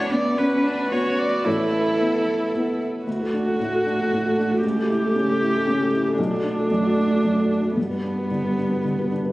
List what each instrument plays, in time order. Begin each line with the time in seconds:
Already playing: felt piano D2 F#5, string section B3 C#4 B4, cello D4, viola C#5
0.12 cello B3, viola D5
0.37 felt piano B3 C#4 B4, cello C#4, viola B4
0.63 cello D4
0.91 felt piano B3 C#4 B4, cello F#4, viola C#5
1.19 viola D5
1.44 felt piano A1 C#5, cello E4, string section E4, viola A4
2.01 felt piano B3 E4 B4
2.55 felt piano B3 E4 B4
3.03 felt piano D2, cello A3, viola F#4
3.20 felt piano F#4 A4
3.34 felt piano D4
3.46 felt piano F#4 A4
3.60 felt piano A2
3.72 felt piano F#4 A4
3.86 felt piano D4
3.99 felt piano F#4 A4
4.12 felt piano A2
4.25 felt piano F#4 A4
4.38 felt piano D4
4.51 felt piano F#4 A4
4.62 felt piano C#2, viola G4
4.77 felt piano G4 A4
4.90 felt piano E4
5.03 felt piano G4 A4
5.16 felt piano C#3
5.29 felt piano G4 A4
5.41 felt piano E4
5.54 felt piano G4 A4
5.68 felt piano C#3
5.80 felt piano G4 A4
5.93 felt piano E4
6.06 felt piano G4 A4
6.16 felt piano B1, cello A3, viola D4
6.31 felt piano F#4 A4
6.45 felt piano D4
6.57 felt piano F#4 A4
6.71 felt piano F#2
6.84 felt piano F#4 A4
6.98 felt piano D4
7.11 felt piano F#4 A4
7.24 felt piano F#2
7.38 felt piano F#4 A4
7.51 felt piano D4
7.64 felt piano F#4 A4
7.76 felt piano G2, cello G3, viola B3
7.90 felt piano G4 B4
8.04 felt piano D4
8.18 felt piano G4 B4
8.30 felt piano D3
8.44 felt piano G4 B4
8.58 felt piano D4
8.70 felt piano G4 B4
8.85 felt piano D3
8.98 felt piano G4 B4
9.12 felt piano D4
9.24 felt piano G4 B4